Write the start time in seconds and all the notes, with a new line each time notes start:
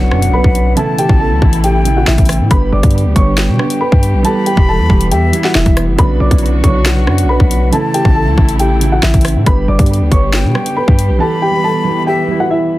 Already playing: B1 B2 C#3 D3 F#3 B3 D4 E4 C#5 F#5 C#6, impact
0.10 F#2 F#3 B3 C#4 D4, cross-stick
0.22 closed hi-hat
0.28 B1
0.33 B4 B5
0.44 B1, kick
0.55 closed hi-hat
0.75 C#3 E3 A3 E4 A4 A5, closed hi-hat
0.99 G4 G5, closed hi-hat
1.08 A1 C#3 E3 A3 F#4, kick
1.20 A4 A5
1.31 C#2
1.41 A1 C#3 E3 A3 E4, kick
1.53 closed hi-hat
1.64 G4 G5, closed hi-hat
1.84 C#3 E3 A3 E4, closed hi-hat
1.97 F#4 F#5
2.07 A1 E4 E5, snare
2.18 A1, kick, closed hi-hat
2.25 cross-stick, closed hi-hat, open hi-hat
2.33 closed hi-hat
2.40 A2
2.49 G1 D3 G3 B3 G4 B4 B5, kick, closed hi-hat
2.72 G1 D5 D6
2.82 G2 D3 G3 B3 G4, kick, closed hi-hat
2.91 closed hi-hat
2.98 closed hi-hat
3.05 D2
3.14 G1 D3 G3 B3 G4 C#5 C#6, kick, closed hi-hat
3.38 G5, snare, closed hi-hat
3.49 B2
3.58 D3 G3 B3 G4, cross-stick
3.70 closed hi-hat
3.81 B4 B5
3.92 G2, kick
4.03 closed hi-hat
4.14 B1
4.23 E3 G3 B3 G4 A4 A5 B5, closed hi-hat
4.46 G4 G5, closed hi-hat
4.55 E1 E3 G3 B3 G4, kick
4.69 A4 A5
4.79 E2
4.88 E1 E3 G3 B3 G4, kick
5.01 closed hi-hat
5.11 E2 G4 E5 G5, closed hi-hat
5.32 E3 G3 B3 E4, closed hi-hat
5.44 F#4 F#5, snare
5.55 E1 E4 E5, snare
5.66 E1, kick, closed hi-hat
5.77 cross-stick, closed hi-hat
5.88 F#1
5.96 B1 C#3 D3 F#3 B3 D4 F#4 B4 B5, kick, closed hi-hat
6.20 B1 D5 D6
6.29 B1 C#3 F#3 B3 E4, kick, closed hi-hat
6.38 closed hi-hat
6.46 closed hi-hat
6.62 B1 C#3 F#3 B3 D4 C#5 C#6, kick, closed hi-hat
6.86 F#5, snare, closed hi-hat
7.06 F#2 F#3 B3 C#4 D4, cross-stick
7.18 closed hi-hat
7.24 B1
7.29 B4 B5
7.40 B1, kick
7.51 closed hi-hat
7.71 C#3 E3 A3 E4 A4 A5, closed hi-hat
7.94 G4 G5, closed hi-hat
8.03 A1 C#3 E3 A3 F#4, kick
8.15 A4 A5
8.27 C#2
8.36 A1 C#3 E3 A3 E4, kick
8.49 closed hi-hat
8.59 G4 G5, closed hi-hat
8.79 C#3 E3 A3 E4, closed hi-hat
8.92 F#4 F#5
9.03 A1 E4 E5, snare
9.14 A1, kick, closed hi-hat
9.21 cross-stick, closed hi-hat, open hi-hat
9.28 closed hi-hat
9.36 A2
9.45 G1 D3 G3 B3 G4 B4 B5, kick, closed hi-hat
9.68 G1 D5 D6
9.77 G2 D3 G3 B3 G4, kick, closed hi-hat
9.86 closed hi-hat
9.93 closed hi-hat
10.01 D2
10.10 G1 D3 G3 B3 G4 C#5 C#6, kick, closed hi-hat
10.33 G5, snare, closed hi-hat
10.44 B2
10.54 D3 G3 B3 G4, cross-stick
10.66 closed hi-hat
10.77 B4 B5
10.88 G2, kick
10.99 closed hi-hat
11.09 B1
11.19 E3 G3 B3 G4 A4 A5 B5
11.42 G4 G5
11.51 E3 G3 B3 G4
11.64 A4 A5
11.84 E3 G3 B3 G4
12.07 G4 E5 G5
12.28 E3 G3 B3 E4
12.40 F#4 F#5
12.51 E4 E5